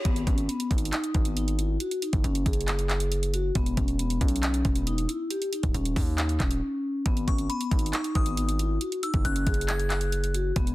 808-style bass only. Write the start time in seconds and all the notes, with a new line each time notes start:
0.05 G#1
0.27 G#1
0.71 G#1
1.15 G#1
2.13 F#1
2.24 F#1
2.46 F#1
3.55 E1
3.77 E1
4.21 B1
4.65 E1
5.63 C#1
5.74 D#1
5.96 D#2
6.40 D#1
7.06 G#1
7.28 G#1
7.71 G#1
8.15 G#1
9.14 F#1
9.25 F#1
9.47 F#1
10.56 E1